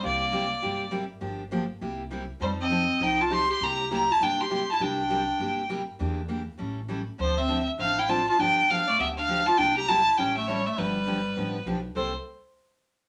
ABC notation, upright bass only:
X:1
M:4/4
L:1/8
Q:"Swing" 1/4=201
K:Cmix
V:1 name="Upright bass" clef=bass
C,,4 G,,,4 | G,,,4 C,,4 | F,,4 C,,4 | C,,4 G,,,4 |
C,,4 G,,,4 | E,,4 A,,,4 | D,,4 A,,,4 | G,,,4 D,,4 |
C,,4 A,,,4 | G,,,4 A,,,2 =B,,,2 | C,, z6 z |]